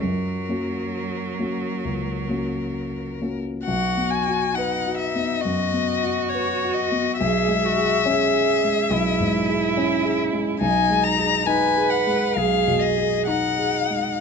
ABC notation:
X:1
M:4/4
L:1/16
Q:1/4=68
K:F#
V:1 name="Violin"
A12- A3 z | [K:B] f2 g2 f2 e2 d4 c2 d2 | e12- e2 z2 | [K:G#dor] g2 a2 g2 f2 e2 d2 f4 |]
V:2 name="Cello"
F,12- F,2 z2 | [K:B] F4 D4 F8 | G2 F2 G4 E8 | [K:G#dor] D4 B4 G4 D4 |]
V:3 name="Grand piano"
F,,2 [A,CF]4 [A,CF]2 C,,2 [A,CF]4 [A,CF]2 | [K:B] (3B,,,2 B,2 F2 (3B2 F2 B,2 (3F,,2 B,2 F2 (3B2 F2 B,2 | (3B,,,2 G,2 G2 (3C2 G2 G,2 (3B,,,2 G,,2 G2 (3C2 G2 G,2 | [K:G#dor] (3B,,,2 G,2 G2 (3D2 G2 G,2 (3B,,,2 B,,2 G2 (3D2 G2 G,2 |]